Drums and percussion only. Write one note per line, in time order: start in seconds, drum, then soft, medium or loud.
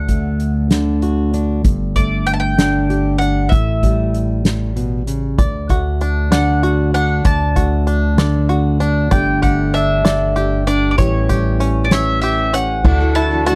0.09 kick medium
0.09 closed hi-hat medium
0.40 closed hi-hat soft
0.71 snare medium
0.71 closed hi-hat medium
1.02 closed hi-hat soft
1.34 closed hi-hat soft
1.65 kick medium
1.65 closed hi-hat medium
1.96 kick medium
1.96 closed hi-hat medium
2.27 closed hi-hat medium
2.59 snare medium
2.59 closed hi-hat medium
2.90 closed hi-hat soft
3.21 closed hi-hat soft
3.52 kick medium
3.52 closed hi-hat medium
3.83 kick medium
3.83 closed hi-hat soft
4.14 closed hi-hat soft
4.45 snare medium
4.45 closed hi-hat medium
4.77 closed hi-hat soft
5.07 closed hi-hat medium
5.38 kick medium
5.38 closed hi-hat medium
5.69 kick medium
5.69 closed hi-hat soft
6.01 closed hi-hat soft
6.32 snare medium
6.32 closed hi-hat medium
6.63 closed hi-hat soft
6.94 closed hi-hat medium
7.25 kick medium
7.25 closed hi-hat medium
7.56 kick medium
7.56 closed hi-hat soft
7.87 closed hi-hat medium
8.18 snare medium
8.18 closed hi-hat medium
8.49 closed hi-hat soft
8.81 closed hi-hat medium
9.11 kick medium
9.11 closed hi-hat medium
9.43 kick medium
9.43 closed hi-hat soft
9.74 closed hi-hat soft
10.05 snare medium
10.05 closed hi-hat medium
10.36 closed hi-hat soft
10.67 closed hi-hat medium
10.98 kick medium
10.98 closed hi-hat medium
11.29 kick medium
11.29 closed hi-hat soft
11.61 closed hi-hat medium
11.91 snare medium
11.91 closed hi-hat medium
12.23 closed hi-hat medium
12.54 closed hi-hat medium
12.85 kick medium
12.85 crash medium
13.15 closed hi-hat medium
13.47 closed hi-hat medium